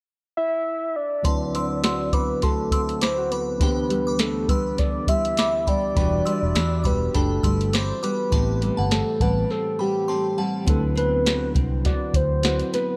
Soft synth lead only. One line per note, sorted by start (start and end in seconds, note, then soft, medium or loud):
0.37 0.97 E5 loud
0.96 2.13 D5 loud
2.14 2.45 B4 medium
2.43 3.03 A4 medium
3.02 3.33 C5 medium
3.31 4.21 B4 medium
4.20 4.50 A4 medium
4.49 4.80 B4 medium
4.79 5.10 D5 medium
5.08 5.70 E5 loud
5.68 6.88 D5 medium
6.86 7.15 B4 medium
7.15 7.75 A4 medium
7.74 8.03 C5 medium
8.03 8.93 B4 medium
8.92 9.23 A4 medium
9.22 9.50 B4 medium
9.51 9.83 A4 medium
9.81 10.39 G4 medium
10.69 10.82 A4 medium
10.97 11.52 B4 loud
11.86 12.17 D5 medium
12.16 12.76 C5 loud
12.75 12.97 B4 medium